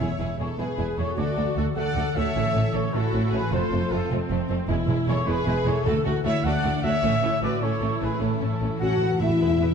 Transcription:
Already playing: C#5 E5
0.00 E1 E3 E4 G#4
0.11 G#3
0.19 E1 E2 B3 E4 G#4
0.30 B4
0.39 E1 E2 E4 G#4 A4 C#5
0.49 B4
0.58 E1 E2 E4 G#4 B4 B5
0.69 G#5
0.78 E1 E2 E4 G#4 B4
0.87 G#4
0.97 E1 E2 E4 G#4 A4 B4 C#5
1.08 B3
1.17 D2 D3 A3 F#4 A4 D5
1.27 A3
1.36 D2 A3 D4 F#4
1.46 F#4
1.56 D2 A3 F#4 A4
1.66 D5
1.75 D2 A3 F#4 A4 D5 F#5
1.85 A5
1.95 D2 A3 F#4 D5
2.05 A4
2.15 D2 A3 F#4 C#5 E5
2.25 D4
2.34 A1 A2 A3 C#4
2.45 E3
2.54 A1 A2 A3 C#4
2.64 C#4
2.73 A1 A2 A3 C#4 A4 C#5
2.83 C#4
2.93 A1 A2 A3 C#4 E4 F#4 A4 C#5
3.03 A5
3.13 A1 A2 A3 C#4 A4
3.23 C#4
3.32 A1 A2 A3 C#4 G#4 B4
3.42 E3
3.51 F1 F2 F3 A3 C4 F4 A4 C5
3.62 A3
3.71 F1 F2 A3 C4
3.81 A4
3.91 F1 F2 A3 C4 F4 A4
4.01 C5
4.10 F1 F2 A3 C4 A5
4.20 C5
4.30 F1 F2 A3 C4 A4
4.40 C4
4.49 F1 F2 A3 C4 A4
4.59 C4
4.68 E1 E2 E3 G#3 E4
4.78 G#3
4.87 E1 E2 G#3 E4
4.99 B4
5.07 E1 E2 G#3 E4 G#4 A4 C#5
5.18 E5
5.26 E1 E2 G#3 E4 G#4 B4 B5
5.38 G#5
5.46 E1 E2 G#3 E4 E5
5.57 G#4
5.65 E1 E2 G#3 E4 A4 B4 C#5
5.77 E4
5.85 D2 D3 A3 F#4 A4
5.96 D4
6.04 D2 A3 F#4
6.15 A4
6.23 D2 A3 E4 F#4 C#5 D5 E5
6.34 A4
6.43 D2 A3 D4 F#4 D5 F#5 A5
6.54 D6
6.64 D2 A3 F#4 A4
6.73 D5
6.83 D2 A3 F#4 A4 C#5 E5
6.93 A3
7.02 A1 A2 A3 C#4
7.13 E3
7.22 A1 A2 A3 C#4 E4
7.32 A4
7.42 A1 A2 A3 C#4 F#4 B4 C#5 D5
7.53 A4
7.61 A1 A2 A3 C#4 E4 A4 C#5 A5
7.72 C#6
7.81 A1 A2 A3 C#4 A4
7.92 C#5
8.01 A1 A2 A3 C#4 G#4 A4 B4
8.12 A3
8.20 A1 A2 A3 C#4 E4 A4
8.30 A2 E3
8.38 A1 A2 A3 C#4
8.42 A2 A3
8.53 A2 A4
8.60 A1 A2 A3 C#4 C#5
8.68 A2
8.72 A2 A4
8.80 A1 A2 C#4 F#4 F#5 A5
8.90 A2 C#6
8.97 A1 A2 B3
9.01 A2 A4
9.11 A2 C#5
9.20 A1 A2 A3 E4 A4 E5
9.28 A2
9.40 E2 E3 G#4 B4
9.51 G#3
9.61 B3 G#4 B4
9.70 B4

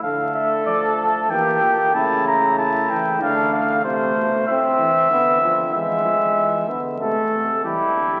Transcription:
0.03 D3 A3 A4 F5
0.35 E5
0.66 F3 D5
0.99 A5
1.30 E3 A#3 G4 G5
1.63 A#2
1.94 C#3 A3 E4 A5
2.27 A#5
2.58 E4 A5
2.90 E3 G5
3.21 D3 A3 D4 F5
3.54 F5
3.84 C3 A3 C5
4.16 B2
4.47 A2 C4 E5
4.79 E3
5.10 D3 B3
5.42 F3
5.73 E3 G#3 E5
6.05 F3
6.37 E3
6.68 D3 B3
7.00 C3 A3 A4
7.32 C3
7.64 E3 G3 E4 G4
7.96 D3

